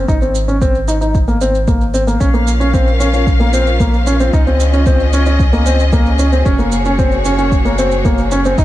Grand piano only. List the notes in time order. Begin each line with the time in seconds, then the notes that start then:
0.08 D#4
0.22 C4
0.48 C#4
0.62 C4
0.88 D#4
1.01 D#4
1.28 A#3
1.41 C4
1.68 A#3
1.94 C4
2.07 A#3
2.20 C#4
2.34 A#3
2.60 C#4
2.74 C4
3.00 C#4
3.13 C#4
3.40 A#3
3.54 C4
3.80 A#3
4.07 C#4
4.20 C4
4.33 D#4
4.47 C4
4.73 C#4
4.87 C4
5.13 C#4
5.26 C#4
5.53 A#3
5.66 C4
5.93 A#3
6.19 C#4
6.32 C4
6.45 C#4
6.59 A#3
6.86 C#4
6.99 C4
7.25 C#4
7.38 C#4
7.65 A#3
7.79 C4
8.05 A#3
8.32 C#4
8.45 C4
8.59 D#4